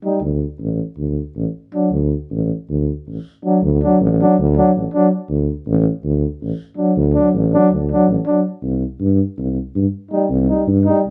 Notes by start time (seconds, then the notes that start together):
0.05 G3 D#4
0.21 D2
0.59 A1
0.97 D2
1.36 A1
1.74 F#3 D4
1.91 D2
2.30 A1
2.69 D2
3.07 A1
3.45 F#3 D4
3.62 D2
3.83 F#3 D4
4.00 A1
4.20 F#3 D4
4.38 D2
4.57 F#3 D4
4.76 A1
4.94 F#3 D4
5.29 D2
5.67 A1
6.03 D2
6.42 A1
6.77 F#3 D4
6.96 D2
7.14 D4
7.18 F#3
7.34 A1
7.54 F#3 D4
7.71 D2
7.92 F#3 D4
8.08 A1
8.26 F#3 D4
8.62 C2
9.00 G2
9.38 C2
9.75 G2
10.11 G3 D#4
10.29 C2
10.49 G3 D#4
10.67 G2
10.85 G3 D#4
11.07 C2